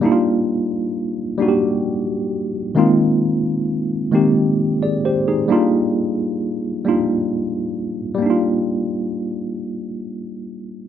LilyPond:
\new Staff \with { instrumentName = "Tine electric piano" } { \time 6/8 \key ees \major \tempo 4. = 44 << { r2. | r2 r16 <aes' d''>16 <g' c''>16 <ees' aes'>16~ | <ees' aes'>16 r2 r8. | r2. | } \\ { <g bes d' ees' fes' f'>4~ <g bes d' ees' fes' f'>16 r16 <g bes d' ees' ges' g'>4~ <g bes d' ees' ges' g'>16 r16 | <ees aes bes c' ees' f'>4~ <ees aes bes c' ees' f'>16 r16 <ees aes bes c' ees' g'>4~ <ees aes bes c' ees' g'>16 r16 | <g bes d' ees' f'>4~ <g bes d' ees' f'>16 r16 <g bes d' ees' f'>4~ <g bes d' ees' f'>16 r16 | <g bes d' ees' f'>2. | } >> }